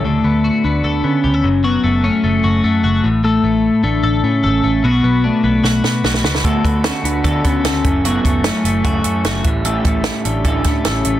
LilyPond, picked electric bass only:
\new Staff \with { instrumentName = "Picked electric bass" } { \clef bass \time 4/4 \key d \major \tempo 4 = 150 d,8 d,8. r16 d,8 d,8 d8 d,8 fis,,8~ | fis,,8 fis,,8. r16 fis,,8 fis,,8 fis,8 fis,,8 a,,8~ | a,,8 a,,8. r16 a,,8 a,,8 a,8 a,,8 a,,8 | b,,8 b,,8. r16 b,,8 b,,8 b,8 b,,8 cis,8 |
d,8 d,8. r16 d,8 d,8 d8 d,8 fis,,8~ | fis,,8 fis,,8. r16 fis,,8 fis,,8 fis,8 fis,,8 a,,8~ | a,,8 a,,8. r16 a,,8 a,,8 a,8 a,,8 a,,8 | }